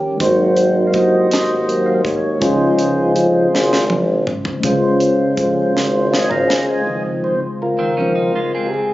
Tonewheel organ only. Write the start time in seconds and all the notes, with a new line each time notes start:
Already playing: C#4 G4
0.21 F#3 A#3 C4 D#4 F#4 C5
0.87 F5
0.94 F#4 C5 D#5
1.68 F#3 A#3 C4
1.86 F5
2.05 C#5
2.40 F3 C#4 D#4 F4 G#4 C5
4.64 G#3 C#4 F4 C5
6.13 D#5 G#5
6.31 F5 A#5
6.69 D#5 G#5
6.87 D#3 F3 C4
7.24 C5
7.62 F4 A#4
8.00 D#3 F3 C4
8.67 G4
8.74 G#4